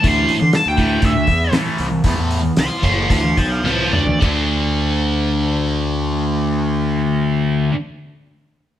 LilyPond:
<<
  \new Staff \with { instrumentName = "Lead electric guitar" } { \time 4/4 \key a \dorian \tempo 4 = 104 c'''4 a''16 g''8. e''4 r4 | r4 <a'' c'''>8 <a'' c'''>8 <a'' c'''>8 <f'' a''>8 <f'' a''>8 d''8 | r1 | r1 | }
  \new Staff \with { instrumentName = "Distorted electric guitar" } { \clef bass \time 4/4 \key a \dorian <a, e a>8 r4 <a, e a>8 r4 <a, e a>8 r8 | <a, e a>8 r4 <a, e a>8 r4 <a, e a>8 r8 | <d a d'>1~ | <d a d'>1 | }
  \new Staff \with { instrumentName = "Fingered electric bass" } { \clef bass \time 4/4 \key a \dorian d,8 r16 d16 r16 d,8. d,8 e,8 r8 c,8 | e,16 e,8. c,16 r16 fis,,8 d,8 b,,8 c,8 d,8 | d,1~ | d,1 | }
  \new DrumStaff \with { instrumentName = "Drums" } \drummode { \time 4/4 <hho bd>8 hho8 <hho sn>8 <hho bd>8 <hho bd>8 <hho bd>8 <hho sn>16 sn16 hho8 | <hho bd>8 hho8 <hho sn>8 <hho bd>8 <hho bd>8 <hho bd>8 sn8 toml16 tomfh16 | <cymc bd>4 r4 r4 r4 | r4 r4 r4 r4 | }
>>